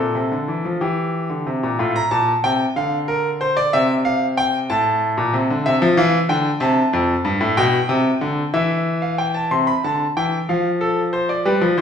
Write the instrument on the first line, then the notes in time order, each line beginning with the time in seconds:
grand piano
Already playing: A4
0.00 A#2
0.15 C3
0.32 D3
0.48 E3
0.65 F3
0.81 E3 G4
1.30 D3
1.47 C3
1.63 A#2
1.79 A2 F4
1.96 A#5
2.11 A#2 A5
2.44 C3 G5
2.76 D3 F5
3.08 A#4
3.41 C5
3.57 D5
3.73 C3 E5
4.05 F5
4.37 G5
4.70 A2 A5
5.18 A#2
5.33 C3
5.50 D3
5.66 C3 E5
5.82 F3
5.97 E3 F5
6.29 D3 G5
6.60 C3 A5
6.93 F2
7.25 G2
7.41 A2
7.57 B2 G5
7.89 C3
8.21 D3
8.54 E3 E5
9.02 F5
9.18 G5
9.34 A5
9.51 C3 C6
9.67 B5
9.84 D3 A5
10.17 E3 G5
10.49 F3 F5
10.81 A4
11.13 C5
11.29 D5
11.45 G3 B4
11.61 F3
11.78 E3 C5